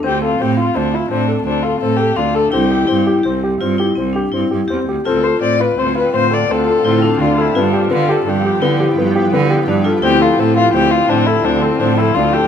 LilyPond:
<<
  \new Staff \with { instrumentName = "Violin" } { \time 7/4 \key d \dorian \tempo 4 = 168 g'8 f'8 g'8 f'8 d'8 e'8 d'4 d'8 f'8 a'8 g'8 f'8 a'8 | g'2 r1 r4 | a'8 c''8 d''8 b'8 c''8 b'8 c''8 d''8 a'2 f'8 e'8 | d'4 f'8 a'8 g'4. r2. r8 |
g'8 f'8 a'8 f'8 g'8 f'8 d'8 e'8 d'8 c'8 d'8 e'8 f'8 g'8 | }
  \new Staff \with { instrumentName = "Vibraphone" } { \time 7/4 \key d \dorian c'1. d'4 | e'4 e'4 g'4 f'8 e'8 c'8 d'8 e'4 g'4 | f'1~ f'4 e'8 d'4. | f'2. e'2. d'8 f'8 |
e'1.~ e'4 | }
  \new Staff \with { instrumentName = "Grand piano" } { \time 7/4 \key d \dorian c'8 a'8 c'8 f'8 c'8 f'8 c'8 a'8 c'8 a'8 c'8 a'8 d'8 a'8 | c'8 g'8 c'8 g'8 c'8 g'8 c'8 g'8 c'8 g'8 c'8 g'8 c'8 g'8 | c'8 a'8 c'8 f'8 c'8 f'8 c'8 a'8 c'8 a'8 c'8 a'8 d'8 a'8 | b8 g'8 b8 g'8 d'8 g'8 b8 g'8 b8 g'8 b8 g'8 d'8 a'8 |
c'8 a'8 c'8 f'8 c'8 f'8 c'8 a'8 c'8 a'8 c'8 a'8 d'8 a'8 | }
  \new Staff \with { instrumentName = "Ambient pad" } { \time 7/4 \key d \dorian r1. r4 | r1. r4 | <d c' f'>1.~ <d c' f'>4 | <f b g'>1.~ <f b g'>4 |
<d f c'>1.~ <d f c'>4 | }
  \new Staff \with { instrumentName = "Cello" } { \clef bass \time 7/4 \key d \dorian d,4 a,4 d,4 a,4 d,4 a,4 d,4 | c,4 g,4 c,4 g,4 c,4 g,8 g,8 e,8 d,8 | d,4 a,4 d,4 a,4 d,4 a,4 d,4 | g,4 d4 g,4 d4 g,4 d4 g,4 |
d,4 a,4 d,4 a,4 d,4 a,4 d,4 | }
>>